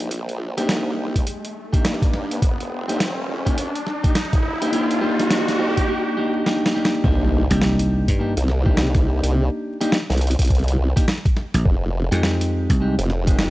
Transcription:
Already playing: riser
0.00 A#1, closed hi-hat
0.11 closed hi-hat
0.29 closed hi-hat
0.57 C2 A#3 D4 D#4 G4, snare, closed hi-hat
0.69 snare, closed hi-hat
0.98 C2
1.16 kick, closed hi-hat
1.27 closed hi-hat
1.45 closed hi-hat
1.73 A#3 D4 D#4 G4, kick, closed hi-hat
1.85 G2, snare, closed hi-hat
2.02 kick, closed hi-hat
2.14 snare
2.31 closed hi-hat
2.42 F1, kick, closed hi-hat
2.60 closed hi-hat
2.88 F1 A#3 D4 D#4 G4, closed hi-hat
3.00 snare, closed hi-hat
3.28 F1
3.46 A#3 D4 D#4 G4, kick, closed hi-hat
3.58 closed hi-hat
3.75 closed hi-hat
3.87 snare
4.04 A#3 D4 D#4 G4, kick, closed hi-hat
4.15 snare, closed hi-hat
4.33 D#1, kick, closed hi-hat
4.61 D#1 A#3 D4 D#4 G4, closed hi-hat
4.72 A#3 D4 D#4 G4, closed hi-hat
4.91 closed hi-hat
5.01 A#3 D4 D#4 G4
5.19 F1, snare, closed hi-hat
5.30 A#3 D4 D#4 G4, snare, closed hi-hat
5.48 snare, closed hi-hat
5.59 F2 A#3 D4 D#4 G4
5.77 kick, closed hi-hat
5.88 A#3 D4 D#4 G4
6.17 A#3 D4 D#4 G4
6.46 A#3 D4 D#4 G4, snare
6.66 snare
6.75 A#3 D4 D#4 G4
6.85 snare
7.04 C2 A#3 D4 D#4 G4, kick, impact
7.50 C2 A#3 D4 D#4 G4, closed hi-hat
7.62 snare
7.79 closed hi-hat
8.08 G2, kick, closed hi-hat
8.19 A#3 D4 D#4 G4
8.37 C2, closed hi-hat
8.48 snare
8.66 A#3 D4 D#4 G4, kick
8.77 snare
8.95 kick, snare, closed hi-hat
9.23 C2, closed hi-hat
9.81 A#3 D4 D#4 G4, snare, closed hi-hat
9.92 snare
10.10 C2, snare, closed hi-hat
10.12 closed hi-hat
10.18 closed hi-hat
10.21 closed hi-hat
10.27 closed hi-hat
10.31 closed hi-hat
10.39 C2, kick, closed hi-hat
10.42 closed hi-hat
10.45 closed hi-hat
10.47 kick, closed hi-hat
10.50 closed hi-hat
10.55 closed hi-hat
10.59 closed hi-hat
10.64 closed hi-hat
10.68 closed hi-hat
10.79 C2
10.96 A#3 D4 D#4 G4, kick, closed hi-hat
11.08 snare
11.25 kick, closed hi-hat
11.37 snare
11.54 A#1, closed hi-hat
11.65 F1, kick
12.11 F2 G#3 C4 D#4 G4, closed hi-hat
12.23 snare
12.41 closed hi-hat
12.70 C2, kick, closed hi-hat
12.80 G#3 C4 D#4 G4
12.98 F1, closed hi-hat
13.10 snare
13.27 G#3 C4 D#4 G4, kick, closed hi-hat
13.39 snare

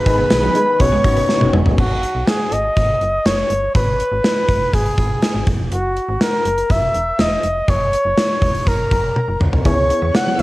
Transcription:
Already playing: D#3 B3 G#4 B4 B5
0.06 G#1 D#4 G#4 B4, muted clean electric guitar stroke, kick, closed hi-hat
0.18 B3
0.30 B1 D#4 G#4 B4, muted clean electric guitar stroke, snare, closed hi-hat, tambourine
0.43 F#3
0.55 G#3 D#4 G#4 B4, closed hi-hat
0.80 B1 C#3 B3 C#4 D#4 F#4 C#5 C#6, kick, closed hi-hat
0.92 G#3
1.04 G#1 B3 C#4 D#4 F#4 C#5, muted clean electric guitar stroke, kick, closed hi-hat
1.16 B3, closed hi-hat
1.29 B3 C#4 D#4 F#4 C#5, muted clean electric guitar stroke, snare
1.41 F#1, high tom
1.53 F#1 G#3 B3 C#4 D#4 F#4 C#5, mid tom
1.66 G1 G#3, floor tom
1.78 G#1 F#4, kick, crash
2.03 closed hi-hat
2.15 B1
2.27 G#4, snare, closed hi-hat
2.52 G#1 D#5, closed hi-hat
2.77 G#1, kick, closed hi-hat
3.01 F#1, closed hi-hat
3.26 F#1 C#5, snare, closed hi-hat
3.50 G1, closed hi-hat
3.75 G#1 B4, kick, closed hi-hat
4.00 closed hi-hat
4.12 G#1
4.24 snare, closed hi-hat
4.49 F#1, kick, closed hi-hat
4.73 G#1 G#4, kick, closed hi-hat
4.86 closed hi-hat
4.98 G#1, kick, closed hi-hat
5.22 snare, closed hi-hat
5.35 G#1
5.47 F#1, kick, closed hi-hat
5.59 F1
5.72 F#1 F#4, closed hi-hat
5.96 closed hi-hat
6.08 G#1
6.21 A#4, snare, closed hi-hat
6.45 F#1, closed hi-hat
6.58 closed hi-hat
6.70 F#1 E5, kick, closed hi-hat
6.94 E1, closed hi-hat
7.19 E1 D#5, snare, closed hi-hat
7.43 F1, closed hi-hat
7.68 F#1 C#5, kick, closed hi-hat
7.93 closed hi-hat
8.05 F#1
8.18 snare, closed hi-hat
8.42 E1, kick, closed hi-hat
8.55 closed hi-hat
8.67 F#1 A#4 A#5, kick, closed hi-hat
8.91 F#1, kick, closed hi-hat
9.16 high tom
9.28 F#1
9.40 C#2, mid tom
9.53 C2, floor tom
9.65 C#2 C#3 B3 C#4 E4 G#4 C#5 C#6, kick, closed hi-hat
9.89 B3 E4 G#4 C#5, muted clean electric guitar stroke, closed hi-hat
10.02 E2 B3
10.14 B3 E4 G#4 C#5 F#5 F#6, muted clean electric guitar stroke, snare, closed hi-hat
10.27 F#3
10.38 C#2 G#3 B3 E4 G#4 E6, closed hi-hat

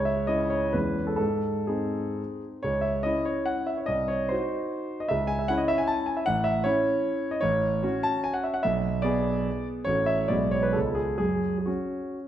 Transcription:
Already playing: C#2 C#5
0.05 E5
0.27 C#4 E4 D#5
0.50 C#5
0.73 E2 G#3 C#4 E4 B4
1.07 A4
1.16 G#2 A4
1.67 C4 D#4 G#4
2.63 C#2 C#5
2.81 E5
3.03 C#4 E4 D#5
3.25 C#5
3.46 F#5
3.67 E5
3.77 C#5
3.86 C2 D#5
4.08 C#5
4.29 D#4 F#4 C5
5.00 D#5
5.09 C#2 E5
5.27 G#5
5.39 E5
5.48 C#4 E4 F#5
5.58 D#5
5.68 E5
5.78 G#5
5.87 A5
6.06 G#5
6.17 E5
6.26 A1 F#5
6.44 E5
6.64 C#4 E4 C#5
7.31 D#5
7.41 A1 C#5
7.83 C#4 F#4
8.03 A5
8.24 G#5
8.34 F#5
8.44 E5
8.54 F#5
8.63 B1 E5
9.02 B3 G#4 D5
9.85 A1 A3 C#4 F#4 C#5
10.06 E5
10.28 B1 G#3 B3 F#4 D5
10.51 C#5
10.63 B4
10.73 C#2 G#3 B3 F4 A4
10.95 G#4
11.18 F#2 G#4
11.58 G#4
11.66 C#4 F#4

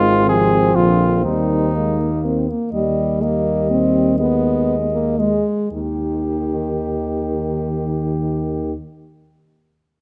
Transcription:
Already playing: G#1 D#3 G#3 C4 F4
0.29 C3 F3 G#4
0.76 A#1 D3 F4
1.24 D#2 D#3 G3 D#4
1.75 G#3 A#3
2.00 A#3
2.25 C4
2.49 A#3
2.73 D#2 G3 D#5
3.22 G3 A#3 D#5
3.70 C4
4.19 G#3 B3 D#5
4.93 A#3
5.19 G#3 D#5
5.71 D#2 D#3 G4

